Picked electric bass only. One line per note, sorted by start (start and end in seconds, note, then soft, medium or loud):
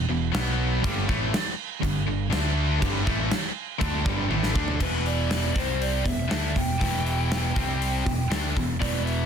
0.09 0.32 E1 medium
0.33 0.79 B1 medium
0.84 1.06 G1 medium
1.10 1.32 A1 medium
1.82 2.05 G1 medium
2.07 2.30 G1 medium
2.32 2.78 D2 loud
2.82 3.05 G1 medium
3.08 3.30 A1 medium
3.81 4.04 D2 loud
4.06 4.29 G1 medium
4.29 4.53 A1 loud
4.55 4.79 D2 medium
4.80 5.51 E1 medium
5.56 6.02 C2 medium
6.05 6.28 E1 medium
6.29 6.52 D2 medium
6.57 6.79 E1 medium
6.82 7.52 E1 medium
7.56 8.02 C2 medium
8.06 8.29 E1 medium
8.30 8.53 D2 medium
8.57 8.79 E1 medium
8.81 9.26 E1 medium